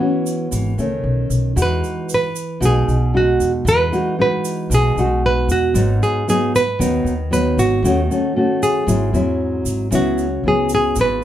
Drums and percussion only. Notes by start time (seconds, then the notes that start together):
0.26 shaker
0.52 shaker
0.79 shaker
1.31 shaker
1.57 shaker
1.84 shaker
2.09 shaker
2.36 shaker
2.62 shaker
2.89 shaker
3.41 shaker
3.67 shaker
3.93 shaker
4.45 shaker
4.71 shaker
4.98 shaker
5.49 shaker
5.75 shaker
6.03 shaker
6.29 shaker
6.56 shaker
6.81 shaker
7.07 shaker
7.33 shaker
7.59 shaker
7.85 shaker
8.11 shaker
8.63 shaker
8.88 shaker
9.14 shaker
9.66 shaker
9.92 shaker
10.18 shaker
10.69 shaker
10.96 shaker